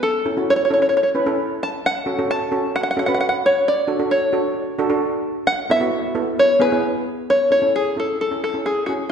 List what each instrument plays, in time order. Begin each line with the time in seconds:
0.03 five-string banjo A4
0.25 steel pan C#4 E4 A4
0.37 steel pan C#4 E4 F#4
0.50 five-string banjo C#5
0.56 five-string banjo C#5
0.65 five-string banjo C#5
0.70 steel pan C#4 E4 A4, five-string banjo C#5
0.82 five-string banjo C#5
0.89 five-string banjo C#5
0.97 five-string banjo C#5
1.03 five-string banjo C#5
1.15 steel pan C#4 E4 B4
1.26 steel pan C#4 E4 A4
1.63 five-string banjo A5
1.86 five-string banjo F#5
2.06 steel pan C#4 F#4 A4
2.19 steel pan C#4 F#4 A4
2.31 five-string banjo A5
2.51 steel pan C#4 F#4 A4
2.76 five-string banjo F#5
2.83 five-string banjo F#5
2.91 five-string banjo F#5
2.97 steel pan C#4 F#4 A4, five-string banjo F#5
3.06 steel pan C#4 F#4 B4, five-string banjo F#5
3.14 five-string banjo F#5
3.21 five-string banjo F#5
3.29 five-string banjo F#5
3.46 five-string banjo C#5
3.68 five-string banjo D5
3.88 steel pan D4 F#4 A4
3.99 steel pan D4 F#4 A4
4.11 five-string banjo C#5
4.33 steel pan D4 F#4 A4
4.79 steel pan D4 F#4 A4
4.90 steel pan D4 F#4 A4
5.47 five-string banjo F#5
5.70 steel pan B3 E4 A4, five-string banjo E5
5.80 steel pan B3 E4 F#4
6.15 steel pan B3 E4 A4
6.39 five-string banjo C#5
6.60 steel pan B3 E4 G#4, five-string banjo B4
6.72 steel pan B3 E4 G#4
7.30 five-string banjo C#5
7.50 steel pan C#4 E4 A4, five-string banjo C#5
7.62 steel pan C#4 E4 A4
7.76 five-string banjo G#4
7.96 steel pan C#4 E4 A4, five-string banjo A4
8.21 five-string banjo A4
8.31 steel pan C#4 E4 A4
8.44 five-string banjo A4
8.54 steel pan C#4 E4 A4
8.66 five-string banjo G#4
8.86 steel pan C#4 E4 G#4, five-string banjo F#4